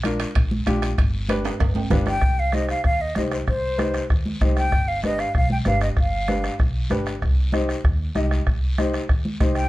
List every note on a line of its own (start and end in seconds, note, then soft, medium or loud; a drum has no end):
0.00 0.23 A#1 medium
0.00 bombo rim medium
0.04 0.26 D4 medium
0.04 0.27 F4 medium
0.04 0.27 A#4 medium
0.04 high conga medium
0.04 high timbale medium
0.04 short guiro medium
0.20 bombo rim medium
0.20 high timbale medium
0.20 short guiro medium
0.35 0.60 A#1 medium
0.35 bombo low medium
0.35 bombo rim medium
0.35 high timbale medium
0.35 long guiro medium
0.51 high conga medium
0.66 0.92 A#1 medium
0.66 0.88 D4 medium
0.66 0.89 F4 medium
0.66 0.88 G4 medium
0.66 bombo rim medium
0.66 high conga medium
0.66 high timbale medium
0.66 short guiro medium
0.82 bombo rim medium
0.82 high timbale medium
0.82 short guiro medium
0.98 1.48 G1 medium
0.98 bombo low medium
0.98 bombo rim medium
0.98 high timbale medium
0.98 long guiro medium
1.29 1.51 D4 medium
1.29 1.51 G4 medium
1.29 1.51 B4 loud
1.29 bombo rim medium
1.29 high conga medium
1.29 high timbale medium
1.29 short guiro medium
1.45 bombo rim medium
1.45 high timbale medium
1.45 short guiro medium
1.60 1.85 G1 medium
1.60 bombo low medium
1.60 bombo rim medium
1.60 high timbale medium
1.60 long guiro medium
1.75 1.90 G5 medium
1.75 high conga medium
1.75 high timbale medium
1.90 2.16 G1 medium
1.90 2.13 D4 medium
1.90 2.13 G4 medium
1.90 2.13 B4 medium
1.90 2.05 F5 medium
1.90 bombo low medium
1.90 bombo rim medium
1.90 high conga medium
1.90 low conga medium
1.90 low timbale medium
1.90 short guiro medium
2.06 2.21 D5 medium
2.06 2.41 G5 loud
2.06 bombo rim medium
2.06 low timbale medium
2.06 short guiro medium
2.21 2.72 C2 medium
2.21 bombo low medium
2.21 bombo rim medium
2.21 long guiro medium
2.39 2.56 F5 medium
2.52 2.75 D#4 medium
2.52 2.75 G4 medium
2.52 2.75 C5 medium
2.52 2.69 D#5 medium
2.52 bombo rim medium
2.52 high conga medium
2.52 short guiro medium
2.69 2.84 F5 medium
2.69 bombo rim medium
2.69 short guiro medium
2.84 3.10 D#2 medium
2.84 3.03 F5 medium
2.84 bombo low medium
2.84 bombo rim medium
2.84 long guiro medium
3.01 3.16 D#5 medium
3.15 3.41 C2 medium
3.15 3.38 D#4 medium
3.15 3.38 G4 medium
3.15 3.39 C5 medium
3.15 3.22 D#5 medium
3.15 bombo rim medium
3.15 high conga medium
3.15 short guiro medium
3.31 3.37 C5 medium
3.31 bombo rim medium
3.31 short guiro medium
3.47 3.97 C2 medium
3.47 4.06 C5 medium
3.47 bombo low medium
3.47 bombo rim medium
3.47 long guiro medium
3.78 4.00 D#4 medium
3.78 4.00 G4 medium
3.78 4.00 B4 medium
3.78 bombo rim medium
3.78 high conga medium
3.78 short guiro medium
3.94 bombo rim medium
3.94 short guiro medium
4.10 4.35 D#2 medium
4.10 bombo low medium
4.10 bombo rim medium
4.10 long guiro medium
4.26 high conga medium
4.41 4.66 C2 loud
4.41 4.63 D#4 medium
4.41 4.63 G4 medium
4.41 4.63 C5 medium
4.41 bombo low medium
4.41 bombo rim medium
4.41 high conga medium
4.41 short guiro medium
4.57 4.90 G5 loud
4.57 bombo rim medium
4.57 short guiro medium
4.72 5.22 G1 medium
4.72 bombo low medium
4.72 bombo rim medium
4.72 long guiro medium
4.88 5.04 F5 medium
5.03 5.26 D4 medium
5.03 5.26 G4 medium
5.03 5.26 B4 medium
5.03 5.21 D#5 medium
5.03 bombo rim medium
5.03 high conga medium
5.03 short guiro medium
5.18 5.35 F5 medium
5.18 bombo rim medium
5.18 short guiro medium
5.34 5.60 B1 medium
5.34 5.50 F5 medium
5.34 bombo low medium
5.34 bombo rim medium
5.34 long guiro medium
5.50 5.58 G5 medium
5.50 high conga medium
5.65 5.91 G1 loud
5.65 5.88 D4 medium
5.65 5.88 G4 medium
5.65 5.88 B4 medium
5.65 5.81 F5 medium
5.65 bombo rim medium
5.65 high conga medium
5.65 short guiro medium
5.81 5.89 D#5 medium
5.81 bombo rim medium
5.81 short guiro medium
5.97 6.47 G1 medium
5.97 6.57 F5 medium
5.97 bombo low medium
5.97 bombo rim medium
5.97 long guiro medium
6.28 6.50 D4 medium
6.28 6.50 G4 medium
6.28 6.50 B4 medium
6.28 bombo rim medium
6.28 high conga medium
6.28 short guiro medium
6.44 bombo rim medium
6.44 short guiro medium
6.59 6.84 B1 medium
6.59 bombo low medium
6.59 bombo rim medium
6.59 long guiro medium
6.90 7.15 G1 medium
6.90 7.12 D4 medium
6.90 7.12 G4 medium
6.90 7.13 B4 medium
6.90 bombo rim medium
6.90 high conga medium
6.90 short guiro medium
7.06 bombo rim medium
7.06 short guiro medium
7.22 7.72 C2 medium
7.22 bombo low medium
7.22 bombo rim medium
7.22 long guiro medium
7.52 7.75 D#4 medium
7.52 7.75 G4 medium
7.52 7.75 C5 loud
7.52 bombo rim medium
7.52 high conga medium
7.52 short guiro medium
7.69 bombo rim medium
7.69 short guiro medium
7.84 8.09 D#2 medium
7.84 bombo low medium
7.84 bombo rim medium
8.15 8.40 C2 medium
8.15 8.37 D#4 medium
8.15 8.37 G4 medium
8.15 8.38 D#5 loud
8.15 bombo rim medium
8.15 high conga medium
8.15 short guiro medium
8.31 bombo rim medium
8.31 short guiro medium
8.47 8.96 C2 medium
8.47 bombo low medium
8.47 bombo rim medium
8.47 long guiro medium
8.78 9.00 D#4 medium
8.78 9.00 G4 medium
8.78 9.00 C5 medium
8.78 bombo rim medium
8.78 high conga medium
8.78 short guiro medium
8.94 bombo rim medium
8.94 short guiro medium
9.09 9.34 D#2 medium
9.09 bombo low medium
9.09 bombo rim medium
9.09 long guiro medium
9.25 high conga medium
9.40 9.65 C2 loud
9.40 9.62 D#4 medium
9.40 9.62 G4 medium
9.40 9.62 C5 medium
9.40 bombo low medium
9.40 bombo rim medium
9.40 high conga medium
9.40 short guiro medium
9.55 9.69 G5 medium
9.55 bombo rim medium
9.55 short guiro medium